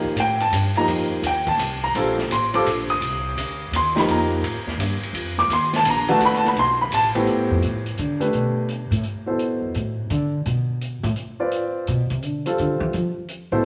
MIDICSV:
0, 0, Header, 1, 5, 480
1, 0, Start_track
1, 0, Tempo, 354400
1, 1191, Time_signature, 3, 2, 24, 8
1, 18488, End_track
2, 0, Start_track
2, 0, Title_t, "Upright piano"
2, 0, Program_c, 0, 0
2, 0, Note_on_c, 0, 53, 66
2, 0, Note_on_c, 0, 58, 67
2, 0, Note_on_c, 0, 63, 68
2, 0, Note_on_c, 0, 67, 74
2, 197, Note_off_c, 0, 58, 0
2, 198, Note_off_c, 0, 53, 0
2, 199, Note_off_c, 0, 67, 0
2, 201, Note_off_c, 0, 63, 0
2, 270, Note_on_c, 0, 79, 97
2, 557, Note_off_c, 0, 79, 0
2, 562, Note_on_c, 0, 81, 93
2, 1001, Note_off_c, 0, 81, 0
2, 1045, Note_on_c, 0, 58, 55
2, 1048, Note_on_c, 0, 82, 113
2, 1050, Note_on_c, 0, 63, 64
2, 1052, Note_on_c, 0, 53, 73
2, 1052, Note_on_c, 0, 67, 70
2, 1198, Note_off_c, 0, 82, 0
2, 1649, Note_off_c, 0, 58, 0
2, 1651, Note_off_c, 0, 63, 0
2, 1652, Note_off_c, 0, 53, 0
2, 1652, Note_off_c, 0, 67, 0
2, 1715, Note_on_c, 0, 79, 86
2, 2000, Note_off_c, 0, 79, 0
2, 2007, Note_on_c, 0, 81, 93
2, 2445, Note_off_c, 0, 81, 0
2, 2488, Note_on_c, 0, 82, 101
2, 2639, Note_off_c, 0, 82, 0
2, 2650, Note_on_c, 0, 55, 67
2, 2653, Note_on_c, 0, 60, 62
2, 2653, Note_on_c, 0, 65, 61
2, 2655, Note_on_c, 0, 69, 75
2, 2926, Note_off_c, 0, 55, 0
2, 2928, Note_off_c, 0, 60, 0
2, 2928, Note_off_c, 0, 65, 0
2, 2929, Note_off_c, 0, 69, 0
2, 3147, Note_on_c, 0, 84, 101
2, 3435, Note_on_c, 0, 55, 76
2, 3438, Note_off_c, 0, 84, 0
2, 3440, Note_on_c, 0, 60, 74
2, 3441, Note_on_c, 0, 65, 67
2, 3448, Note_on_c, 0, 69, 87
2, 3458, Note_on_c, 0, 86, 94
2, 3581, Note_off_c, 0, 55, 0
2, 3584, Note_off_c, 0, 60, 0
2, 3585, Note_off_c, 0, 65, 0
2, 3588, Note_off_c, 0, 69, 0
2, 3892, Note_off_c, 0, 86, 0
2, 3929, Note_on_c, 0, 87, 92
2, 4023, Note_off_c, 0, 87, 0
2, 5095, Note_on_c, 0, 84, 101
2, 5348, Note_on_c, 0, 53, 74
2, 5359, Note_on_c, 0, 58, 70
2, 5360, Note_on_c, 0, 67, 83
2, 5362, Note_on_c, 0, 63, 67
2, 5373, Note_off_c, 0, 84, 0
2, 5404, Note_on_c, 0, 83, 96
2, 5540, Note_off_c, 0, 83, 0
2, 5570, Note_on_c, 0, 82, 96
2, 5964, Note_off_c, 0, 53, 0
2, 5969, Note_off_c, 0, 58, 0
2, 5970, Note_off_c, 0, 67, 0
2, 5971, Note_off_c, 0, 63, 0
2, 6287, Note_off_c, 0, 82, 0
2, 7298, Note_on_c, 0, 86, 107
2, 7447, Note_off_c, 0, 86, 0
2, 7492, Note_on_c, 0, 84, 108
2, 7773, Note_off_c, 0, 84, 0
2, 7805, Note_on_c, 0, 81, 104
2, 7942, Note_off_c, 0, 81, 0
2, 7992, Note_on_c, 0, 82, 111
2, 8242, Note_on_c, 0, 62, 72
2, 8243, Note_on_c, 0, 52, 82
2, 8243, Note_on_c, 0, 57, 77
2, 8247, Note_on_c, 0, 66, 92
2, 8264, Note_off_c, 0, 82, 0
2, 8276, Note_on_c, 0, 81, 99
2, 8417, Note_off_c, 0, 81, 0
2, 8470, Note_on_c, 0, 83, 127
2, 8592, Note_off_c, 0, 83, 0
2, 8631, Note_on_c, 0, 81, 105
2, 8753, Note_off_c, 0, 81, 0
2, 8778, Note_on_c, 0, 83, 95
2, 8852, Note_off_c, 0, 52, 0
2, 8852, Note_off_c, 0, 57, 0
2, 8852, Note_off_c, 0, 62, 0
2, 8854, Note_off_c, 0, 66, 0
2, 8906, Note_off_c, 0, 83, 0
2, 8930, Note_on_c, 0, 84, 119
2, 9213, Note_off_c, 0, 84, 0
2, 9229, Note_on_c, 0, 83, 100
2, 9374, Note_off_c, 0, 83, 0
2, 9400, Note_on_c, 0, 81, 115
2, 9578, Note_off_c, 0, 81, 0
2, 9683, Note_on_c, 0, 45, 72
2, 9684, Note_on_c, 0, 60, 66
2, 9686, Note_on_c, 0, 59, 66
2, 9687, Note_on_c, 0, 64, 57
2, 9694, Note_on_c, 0, 67, 84
2, 10293, Note_off_c, 0, 45, 0
2, 10293, Note_off_c, 0, 60, 0
2, 10294, Note_off_c, 0, 59, 0
2, 10294, Note_off_c, 0, 64, 0
2, 10298, Note_off_c, 0, 67, 0
2, 11109, Note_on_c, 0, 57, 65
2, 11112, Note_on_c, 0, 67, 56
2, 11112, Note_on_c, 0, 71, 74
2, 11116, Note_on_c, 0, 62, 58
2, 11725, Note_off_c, 0, 57, 0
2, 11726, Note_off_c, 0, 67, 0
2, 11727, Note_off_c, 0, 71, 0
2, 11729, Note_off_c, 0, 62, 0
2, 12543, Note_on_c, 0, 47, 59
2, 12552, Note_on_c, 0, 64, 53
2, 12560, Note_on_c, 0, 69, 50
2, 12561, Note_on_c, 0, 72, 63
2, 13161, Note_off_c, 0, 47, 0
2, 13165, Note_off_c, 0, 64, 0
2, 13169, Note_off_c, 0, 69, 0
2, 13170, Note_off_c, 0, 72, 0
2, 15437, Note_on_c, 0, 65, 60
2, 15438, Note_on_c, 0, 60, 65
2, 15442, Note_on_c, 0, 74, 66
2, 15443, Note_on_c, 0, 71, 54
2, 16044, Note_off_c, 0, 65, 0
2, 16045, Note_off_c, 0, 60, 0
2, 16047, Note_off_c, 0, 74, 0
2, 16048, Note_off_c, 0, 71, 0
2, 16873, Note_on_c, 0, 60, 61
2, 16878, Note_on_c, 0, 55, 58
2, 16887, Note_on_c, 0, 69, 64
2, 16888, Note_on_c, 0, 65, 64
2, 17480, Note_off_c, 0, 60, 0
2, 17483, Note_off_c, 0, 55, 0
2, 17487, Note_off_c, 0, 69, 0
2, 17488, Note_off_c, 0, 65, 0
2, 18314, Note_on_c, 0, 47, 70
2, 18314, Note_on_c, 0, 72, 81
2, 18318, Note_on_c, 0, 64, 74
2, 18322, Note_on_c, 0, 69, 67
2, 18488, Note_off_c, 0, 47, 0
2, 18488, Note_off_c, 0, 64, 0
2, 18488, Note_off_c, 0, 69, 0
2, 18488, Note_off_c, 0, 72, 0
2, 18488, End_track
3, 0, Start_track
3, 0, Title_t, "Upright bass"
3, 0, Program_c, 1, 32
3, 210, Note_on_c, 1, 45, 97
3, 686, Note_off_c, 1, 45, 0
3, 698, Note_on_c, 1, 43, 85
3, 1170, Note_off_c, 1, 43, 0
3, 1180, Note_on_c, 1, 41, 88
3, 1648, Note_off_c, 1, 41, 0
3, 1656, Note_on_c, 1, 39, 86
3, 2124, Note_off_c, 1, 39, 0
3, 2132, Note_on_c, 1, 36, 90
3, 2609, Note_off_c, 1, 36, 0
3, 2635, Note_on_c, 1, 34, 97
3, 3101, Note_off_c, 1, 34, 0
3, 3109, Note_on_c, 1, 33, 81
3, 3573, Note_off_c, 1, 33, 0
3, 3581, Note_on_c, 1, 34, 92
3, 4055, Note_off_c, 1, 34, 0
3, 4068, Note_on_c, 1, 36, 92
3, 4535, Note_off_c, 1, 36, 0
3, 4543, Note_on_c, 1, 38, 87
3, 5016, Note_off_c, 1, 38, 0
3, 5027, Note_on_c, 1, 39, 92
3, 5499, Note_off_c, 1, 39, 0
3, 5505, Note_on_c, 1, 41, 92
3, 5978, Note_off_c, 1, 41, 0
3, 5984, Note_on_c, 1, 45, 97
3, 6144, Note_on_c, 1, 41, 56
3, 6164, Note_off_c, 1, 45, 0
3, 6308, Note_off_c, 1, 41, 0
3, 6316, Note_on_c, 1, 39, 63
3, 6459, Note_off_c, 1, 39, 0
3, 6467, Note_on_c, 1, 43, 101
3, 6766, Note_off_c, 1, 43, 0
3, 6946, Note_on_c, 1, 41, 100
3, 7415, Note_off_c, 1, 41, 0
3, 7423, Note_on_c, 1, 39, 89
3, 7893, Note_off_c, 1, 39, 0
3, 7901, Note_on_c, 1, 34, 94
3, 8377, Note_off_c, 1, 34, 0
3, 8382, Note_on_c, 1, 38, 87
3, 8858, Note_off_c, 1, 38, 0
3, 8876, Note_on_c, 1, 35, 94
3, 9344, Note_off_c, 1, 35, 0
3, 9356, Note_on_c, 1, 33, 86
3, 9825, Note_off_c, 1, 33, 0
3, 10162, Note_on_c, 1, 41, 83
3, 10320, Note_off_c, 1, 41, 0
3, 10353, Note_on_c, 1, 45, 78
3, 10785, Note_off_c, 1, 45, 0
3, 10817, Note_on_c, 1, 50, 85
3, 11256, Note_off_c, 1, 50, 0
3, 11295, Note_on_c, 1, 47, 82
3, 12029, Note_off_c, 1, 47, 0
3, 12064, Note_on_c, 1, 45, 85
3, 12230, Note_off_c, 1, 45, 0
3, 13022, Note_on_c, 1, 41, 49
3, 13189, Note_off_c, 1, 41, 0
3, 13207, Note_on_c, 1, 45, 80
3, 13650, Note_off_c, 1, 45, 0
3, 13682, Note_on_c, 1, 50, 83
3, 14127, Note_off_c, 1, 50, 0
3, 14166, Note_on_c, 1, 47, 87
3, 14902, Note_off_c, 1, 47, 0
3, 14944, Note_on_c, 1, 45, 101
3, 15045, Note_off_c, 1, 45, 0
3, 16089, Note_on_c, 1, 47, 83
3, 16384, Note_off_c, 1, 47, 0
3, 16392, Note_on_c, 1, 48, 79
3, 16581, Note_off_c, 1, 48, 0
3, 16581, Note_on_c, 1, 50, 78
3, 16872, Note_off_c, 1, 50, 0
3, 17054, Note_on_c, 1, 50, 83
3, 17332, Note_off_c, 1, 50, 0
3, 17340, Note_on_c, 1, 52, 106
3, 17503, Note_off_c, 1, 52, 0
3, 17523, Note_on_c, 1, 53, 88
3, 17708, Note_off_c, 1, 53, 0
3, 18308, Note_on_c, 1, 45, 79
3, 18485, Note_off_c, 1, 45, 0
3, 18488, End_track
4, 0, Start_track
4, 0, Title_t, "Muted upright bass strokes"
4, 52, Note_on_c, 9, 29, 40
4, 187, Note_off_c, 9, 29, 0
4, 18488, End_track
5, 0, Start_track
5, 0, Title_t, "Drums"
5, 59, Note_on_c, 9, 36, 47
5, 194, Note_off_c, 9, 36, 0
5, 225, Note_on_c, 9, 44, 70
5, 225, Note_on_c, 9, 51, 70
5, 360, Note_off_c, 9, 44, 0
5, 360, Note_off_c, 9, 51, 0
5, 545, Note_on_c, 9, 51, 55
5, 680, Note_off_c, 9, 51, 0
5, 711, Note_on_c, 9, 44, 70
5, 711, Note_on_c, 9, 51, 71
5, 846, Note_off_c, 9, 44, 0
5, 846, Note_off_c, 9, 51, 0
5, 1022, Note_on_c, 9, 51, 52
5, 1158, Note_off_c, 9, 51, 0
5, 1191, Note_on_c, 9, 51, 68
5, 1326, Note_off_c, 9, 51, 0
5, 1670, Note_on_c, 9, 44, 52
5, 1670, Note_on_c, 9, 51, 73
5, 1806, Note_off_c, 9, 44, 0
5, 1806, Note_off_c, 9, 51, 0
5, 1987, Note_on_c, 9, 51, 51
5, 1989, Note_on_c, 9, 36, 73
5, 2122, Note_off_c, 9, 51, 0
5, 2124, Note_off_c, 9, 36, 0
5, 2157, Note_on_c, 9, 44, 57
5, 2157, Note_on_c, 9, 51, 84
5, 2292, Note_off_c, 9, 44, 0
5, 2292, Note_off_c, 9, 51, 0
5, 2638, Note_on_c, 9, 51, 68
5, 2774, Note_off_c, 9, 51, 0
5, 2956, Note_on_c, 9, 38, 48
5, 3091, Note_off_c, 9, 38, 0
5, 3127, Note_on_c, 9, 44, 61
5, 3127, Note_on_c, 9, 51, 70
5, 3262, Note_off_c, 9, 44, 0
5, 3262, Note_off_c, 9, 51, 0
5, 3440, Note_on_c, 9, 51, 56
5, 3575, Note_off_c, 9, 51, 0
5, 3605, Note_on_c, 9, 44, 56
5, 3605, Note_on_c, 9, 51, 76
5, 3740, Note_off_c, 9, 44, 0
5, 3740, Note_off_c, 9, 51, 0
5, 3922, Note_on_c, 9, 51, 49
5, 4057, Note_off_c, 9, 51, 0
5, 4089, Note_on_c, 9, 51, 69
5, 4225, Note_off_c, 9, 51, 0
5, 4572, Note_on_c, 9, 44, 56
5, 4572, Note_on_c, 9, 51, 70
5, 4708, Note_off_c, 9, 44, 0
5, 4708, Note_off_c, 9, 51, 0
5, 5055, Note_on_c, 9, 44, 69
5, 5055, Note_on_c, 9, 51, 71
5, 5191, Note_off_c, 9, 44, 0
5, 5191, Note_off_c, 9, 51, 0
5, 5370, Note_on_c, 9, 38, 69
5, 5373, Note_on_c, 9, 51, 54
5, 5505, Note_off_c, 9, 38, 0
5, 5508, Note_off_c, 9, 51, 0
5, 5532, Note_on_c, 9, 51, 75
5, 5667, Note_off_c, 9, 51, 0
5, 6013, Note_on_c, 9, 51, 70
5, 6148, Note_off_c, 9, 51, 0
5, 6331, Note_on_c, 9, 38, 44
5, 6466, Note_off_c, 9, 38, 0
5, 6498, Note_on_c, 9, 44, 59
5, 6498, Note_on_c, 9, 51, 74
5, 6633, Note_off_c, 9, 44, 0
5, 6633, Note_off_c, 9, 51, 0
5, 6816, Note_on_c, 9, 51, 55
5, 6951, Note_off_c, 9, 51, 0
5, 6970, Note_on_c, 9, 51, 69
5, 7105, Note_off_c, 9, 51, 0
5, 7287, Note_on_c, 9, 38, 39
5, 7422, Note_off_c, 9, 38, 0
5, 7449, Note_on_c, 9, 44, 58
5, 7449, Note_on_c, 9, 51, 75
5, 7585, Note_off_c, 9, 44, 0
5, 7585, Note_off_c, 9, 51, 0
5, 7765, Note_on_c, 9, 38, 55
5, 7768, Note_on_c, 9, 51, 61
5, 7901, Note_off_c, 9, 38, 0
5, 7903, Note_off_c, 9, 51, 0
5, 7925, Note_on_c, 9, 44, 66
5, 7925, Note_on_c, 9, 51, 83
5, 8060, Note_off_c, 9, 44, 0
5, 8060, Note_off_c, 9, 51, 0
5, 8239, Note_on_c, 9, 51, 53
5, 8375, Note_off_c, 9, 51, 0
5, 8406, Note_on_c, 9, 51, 72
5, 8541, Note_off_c, 9, 51, 0
5, 8566, Note_on_c, 9, 38, 32
5, 8701, Note_off_c, 9, 38, 0
5, 8727, Note_on_c, 9, 38, 45
5, 8863, Note_off_c, 9, 38, 0
5, 8891, Note_on_c, 9, 51, 66
5, 9026, Note_off_c, 9, 51, 0
5, 9369, Note_on_c, 9, 44, 54
5, 9369, Note_on_c, 9, 51, 87
5, 9505, Note_off_c, 9, 44, 0
5, 9505, Note_off_c, 9, 51, 0
5, 9684, Note_on_c, 9, 51, 57
5, 9820, Note_off_c, 9, 51, 0
5, 9846, Note_on_c, 9, 42, 39
5, 9982, Note_off_c, 9, 42, 0
5, 10326, Note_on_c, 9, 42, 45
5, 10462, Note_off_c, 9, 42, 0
5, 10643, Note_on_c, 9, 42, 45
5, 10779, Note_off_c, 9, 42, 0
5, 10800, Note_on_c, 9, 42, 50
5, 10936, Note_off_c, 9, 42, 0
5, 11116, Note_on_c, 9, 42, 43
5, 11252, Note_off_c, 9, 42, 0
5, 11281, Note_on_c, 9, 42, 41
5, 11417, Note_off_c, 9, 42, 0
5, 11763, Note_on_c, 9, 42, 53
5, 11899, Note_off_c, 9, 42, 0
5, 12075, Note_on_c, 9, 42, 49
5, 12211, Note_off_c, 9, 42, 0
5, 12234, Note_on_c, 9, 42, 40
5, 12369, Note_off_c, 9, 42, 0
5, 12719, Note_on_c, 9, 42, 42
5, 12854, Note_off_c, 9, 42, 0
5, 13197, Note_on_c, 9, 42, 47
5, 13332, Note_off_c, 9, 42, 0
5, 13679, Note_on_c, 9, 42, 56
5, 13814, Note_off_c, 9, 42, 0
5, 14160, Note_on_c, 9, 42, 44
5, 14296, Note_off_c, 9, 42, 0
5, 14644, Note_on_c, 9, 42, 45
5, 14780, Note_off_c, 9, 42, 0
5, 14951, Note_on_c, 9, 42, 46
5, 15086, Note_off_c, 9, 42, 0
5, 15113, Note_on_c, 9, 42, 45
5, 15249, Note_off_c, 9, 42, 0
5, 15594, Note_on_c, 9, 42, 46
5, 15730, Note_off_c, 9, 42, 0
5, 16076, Note_on_c, 9, 42, 50
5, 16212, Note_off_c, 9, 42, 0
5, 16387, Note_on_c, 9, 42, 49
5, 16522, Note_off_c, 9, 42, 0
5, 16557, Note_on_c, 9, 42, 48
5, 16693, Note_off_c, 9, 42, 0
5, 16872, Note_on_c, 9, 42, 45
5, 17008, Note_off_c, 9, 42, 0
5, 17039, Note_on_c, 9, 42, 43
5, 17175, Note_off_c, 9, 42, 0
5, 17513, Note_on_c, 9, 42, 44
5, 17649, Note_off_c, 9, 42, 0
5, 17992, Note_on_c, 9, 42, 47
5, 18127, Note_off_c, 9, 42, 0
5, 18488, End_track
0, 0, End_of_file